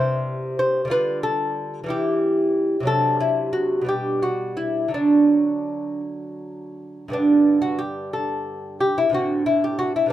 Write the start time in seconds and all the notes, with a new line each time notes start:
Already playing: C3 G3 E4 C5
0.59 C5
0.85 D3 G3
0.90 F4 B4
1.23 A4
1.84 E3 G3
1.89 E4 G4
2.80 C3 F#3
2.85 D4 A4
3.20 E4
3.53 F#4
3.81 B2 G3
3.86 D4 G4
4.23 F#4
4.57 E4
4.88 D3 F#3
4.94 D4
7.08 G2 D3 B3
7.13 D4
7.62 F#4
7.79 G4
8.13 A4
8.80 G4
8.98 E4
9.09 A2 D3 C4
9.14 F#4
9.46 E4
9.64 G4
9.79 F#4
9.96 E4
10.06 B2 G3